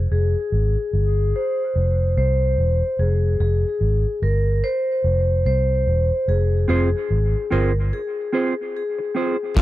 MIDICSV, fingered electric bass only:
0, 0, Header, 1, 2, 480
1, 0, Start_track
1, 0, Key_signature, -4, "minor"
1, 0, Tempo, 823158
1, 1738, Time_signature, 4, 2, 24, 8
1, 5608, End_track
2, 0, Start_track
2, 0, Title_t, "Fingered electric bass"
2, 0, Program_c, 0, 33
2, 66, Note_on_c, 0, 29, 83
2, 199, Note_off_c, 0, 29, 0
2, 304, Note_on_c, 0, 32, 80
2, 438, Note_off_c, 0, 32, 0
2, 544, Note_on_c, 0, 31, 83
2, 770, Note_off_c, 0, 31, 0
2, 1024, Note_on_c, 0, 29, 83
2, 1250, Note_off_c, 0, 29, 0
2, 1265, Note_on_c, 0, 36, 85
2, 1491, Note_off_c, 0, 36, 0
2, 1504, Note_on_c, 0, 28, 80
2, 1638, Note_off_c, 0, 28, 0
2, 1744, Note_on_c, 0, 29, 93
2, 1970, Note_off_c, 0, 29, 0
2, 1983, Note_on_c, 0, 29, 92
2, 2117, Note_off_c, 0, 29, 0
2, 2220, Note_on_c, 0, 32, 85
2, 2356, Note_off_c, 0, 32, 0
2, 2462, Note_on_c, 0, 31, 85
2, 2689, Note_off_c, 0, 31, 0
2, 2940, Note_on_c, 0, 29, 86
2, 3168, Note_off_c, 0, 29, 0
2, 3181, Note_on_c, 0, 36, 82
2, 3409, Note_off_c, 0, 36, 0
2, 3422, Note_on_c, 0, 28, 80
2, 3557, Note_off_c, 0, 28, 0
2, 3661, Note_on_c, 0, 29, 96
2, 3889, Note_off_c, 0, 29, 0
2, 3903, Note_on_c, 0, 29, 89
2, 4037, Note_off_c, 0, 29, 0
2, 4143, Note_on_c, 0, 32, 83
2, 4277, Note_off_c, 0, 32, 0
2, 4385, Note_on_c, 0, 31, 82
2, 4611, Note_off_c, 0, 31, 0
2, 5580, Note_on_c, 0, 29, 101
2, 5608, Note_off_c, 0, 29, 0
2, 5608, End_track
0, 0, End_of_file